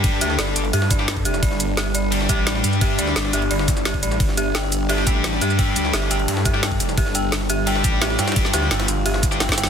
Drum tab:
RD |x-----------x-----------x-----------x-----x-----x-----------x-----------x-----x-----x-----------|x-----------x-----------x-----------x-----------x-----------x-----------x-----------x-----------|x-----------x-----------x-----------x-----x-----x-----------x-----------x-----x-----x-----------|x-----------x-----------x-----------x-----------x-----------x-----------x-----------x-----------|
HH |x-----------x-----------x-----------x-----------x-----------x-----------x-----------x-----------|x-----------x-----------x-----------x-----------x-----------x-----------x-----------x-----------|x-----------x-----------x-----------x-----------x-----------x-----------x-----------x-----------|x-----------x-----------x-----------x-----------x-----------x-----------x-----------x-----------|
SH |------------x-----------------------x-----------------------x-----------------------x-----x-----|------------x-----------------------x-----------------------x-----------------------x-----x-----|------------x-----------------------x-----------------------x-----x-----------------x-----x-----|------------x-----------------------x-----------------------x-----------------------x-----x-----|
SD |------------------o-----o-----o-----------------------o-----o-----o-----o-----------------o-----|------o-----------------o-----o-----------------------o-----------------o-----o-----------------|------------------o-----o-----o-----------------------o-----o-----o-----o-----------------o-----|------o-----------------o-----o-----------------------o-----------------o-----o-----------------|
BD |o-----------------------------------------------------------o-----------------o-----------------|o-----------------------------------------------------------o-----------------------------------|o-----------------------------------------------------------o-----------------o-----------------|o-----------------------------------------------------------o-----------------------------------|

RD |x-----------x-----------x-----------x-----x-----x-----------x-----------x-----x-----x-----------|x-----------x-----------x-----------x-----------x-----------x-----------x-----------x-----x--x--|x-----------x-----------x-----x-----x-----------x-----------x-----------x-----x-----x-----------|
HH |x-----------x-----------x-----------x-----------x-----------x-----------x-----------x-----------|x-----------x-----------x-----------x-----------x-----------x-----------x-----------x-----------|x-----------x-----------x-----------x-----------x-----------x-----------x-----------x-----------|
SH |------------x-----------------------x-----------------------x-----------------------x-----x-----|------------x-----------------------x-----------------------x-----------------------x-----x-----|------------x-----------------------x-----------------------x-----x-----------------x-----x-----|
SD |------------------o-----o-----o-----------------------o-----o-----o-----o-----------------o-----|------o-----------------o-----o-----------------------o-----------------o-----o-----o-----o--o--|------o-----o-----o-----o-----o-----------------------o-----o-----o-----o-----o-o---o---o-o-----|
BD |o-----------------------------------------------------------o-----------------o-----------------|o-----------------------------------------------------------o-----------------------------------|o-----------------------------------------------------------o-----------------o-----------------|